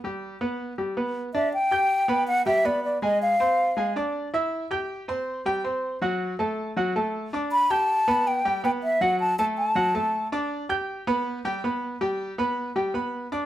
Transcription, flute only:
\new Staff \with { instrumentName = "Flute" } { \time 4/4 \key g \major \tempo 4 = 160 r2. r8 e''8 | g''2 fis''8 e''8 d''8 d''8 | ees''8 f''2 r4. | r1 |
r1 | b''8 a''4. g''4 g''8 e''8 | fis''8 a''8 a''8 a''2 r8 | r1 |
r1 | }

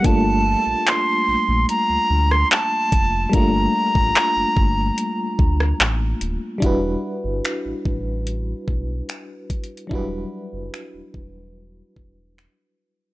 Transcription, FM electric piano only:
\new Staff \with { instrumentName = "FM electric piano" } { \time 4/4 \key g \lydian \tempo 4 = 73 <g a bes d' f'>1 | <g a bes d' f'>1 | <g d' e' fis' b'>1 | <fis g d' e' fis' b'>1 | }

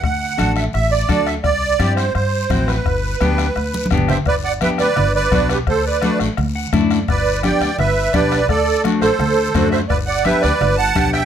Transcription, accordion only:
\new Staff \with { instrumentName = "Accordion" } { \time 4/4 \key g \major \tempo 4 = 170 fis''4. e''8 e''8 d''4 e''8 | d''4. c''8 c''4. b'8~ | b'2. r8 <c'' e''>8 | <b' d''>8 <d'' fis''>8 <b' e''>8 <b' d''>4 <b' d''>4 <g' b'>8 |
<a' c''>8 <b' d''>4 r2 r8 | <b' d''>4 <d'' g''>4 <b' e''>4 <b' d''>4 | <a' d''>4 r8 <a' c''>2 <c'' e''>8 | <b' d''>8 <d'' fis''>8 <b' e''>8 <b' d''>4 <fis'' a''>4 <e'' g''>8 | }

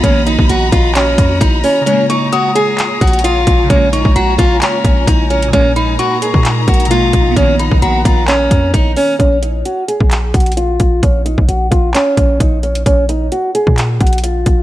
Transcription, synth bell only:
\new Staff \with { instrumentName = "Synth bell" } { \time 4/4 \key ces \lydian \tempo 4 = 131 r1 | r8 des'''8 ees'''2 r4 | r8 des'''8 bes''2. | r8 ces'''8 des'''2 r4 |
r8 b''8 ais''2 r4 | r1 | r1 | r1 | }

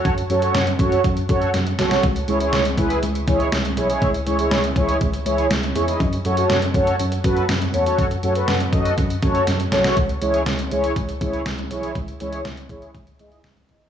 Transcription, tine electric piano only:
\new Staff \with { instrumentName = "Tine electric piano" } { \clef bass \time 4/4 \key cis \minor \tempo 4 = 121 fis,8 fis,8 fis,8 fis,8 fis,8 fis,8 fis,8 b,,8 | cis,8 cis,8 cis,8 cis,8 cis,8 cis,8 cis,8 b,,8 | cis,8 cis,8 cis,8 cis,8 cis,8 cis,8 cis,8 e,8 | fis,8 fis,8 fis,8 fis,8 fis,8 fis,8 fis,8 e,8 |
fis,8 fis,8 fis,8 fis,8 fis,8 fis,8 fis,8 b,,8 | cis,8 cis,8 cis,8 cis,8 cis,8 cis,8 cis,8 b,,8 | cis,8 cis,8 cis,8 cis,8 cis,8 cis,8 cis,8 b,,8 | }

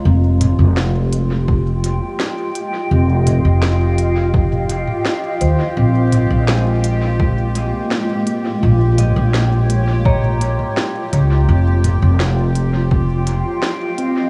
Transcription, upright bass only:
\new Staff \with { instrumentName = "Upright bass" } { \clef bass \time 4/4 \key f \minor \tempo 4 = 84 f,,8. f,,2 r4 r16 | f,,8. f,,2 r8. ees,16 r16 | bes,,8. bes,,2 r4 r16 | bes,,8. bes,,2 r8. des,8 |
f,,8. f,,2 r4 r16 | }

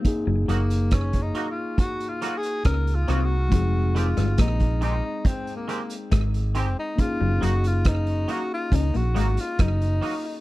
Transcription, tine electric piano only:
\new Staff \with { instrumentName = "Tine electric piano" } { \time 4/4 \key ges \lydian \tempo 4 = 69 <bes ees' aes'>1 | <aes c' ees' aes'>1 | <bes des' ees' aes'>1 | }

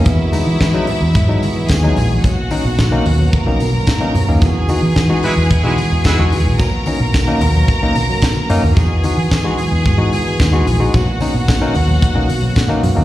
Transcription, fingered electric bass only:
\new Staff \with { instrumentName = "Fingered electric bass" } { \clef bass \time 4/4 \key b \major \tempo 4 = 110 e,8 r16 e16 e8 r16 e,16 gis,8 r8 dis,8 ais,,8 | b,,8 r16 b,16 b,,8 dis,8 r16 b,,16 b,8 b,16 r16 fis,16 dis,16 | e,8 r16 e16 e8 r16 e,16 e16 b,16 r16 e,16 r16 e,16 dis,16 ais,,16 | b,,8 r16 b,16 b,,8 dis,8 r16 b,,16 b,8 b,16 r16 fis,16 dis,16 |
e,8 r16 e16 e8 r16 e,16 gis,8 r8 dis,8 ais,,8 | b,,8 r16 b,16 b,,8 dis,8 r16 b,,16 b,8 b,16 r16 fis,16 dis,16 | }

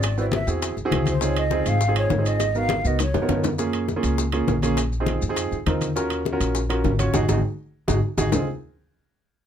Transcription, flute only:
\new Staff \with { instrumentName = "Flute" } { \time 4/4 \key des \major \tempo 4 = 203 d''8 d''8 e''8 r2 c''16. c''32 | des''8 ees''4 f''4 des''4 ees''8~ | ees''8 f''4 ees''8 des''4. r8 | r1 |
r1 | r1 | r1 | r1 | }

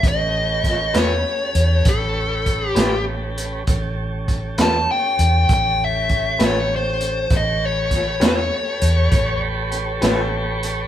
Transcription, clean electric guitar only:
\new Staff \with { instrumentName = "Clean electric guitar" } { \time 12/8 \key a \mixolydian \tempo 4. = 66 r4. <a cis' g' b'>8 r2 r8 <a cis' g' b'>8 r4 | r4. <a cis' g' b'>8 r2 r8 <a cis' g' b'>8 r4 | r4. <a cis' g' b'>8 r2 r8 <a cis' g' b'>8 r4 | }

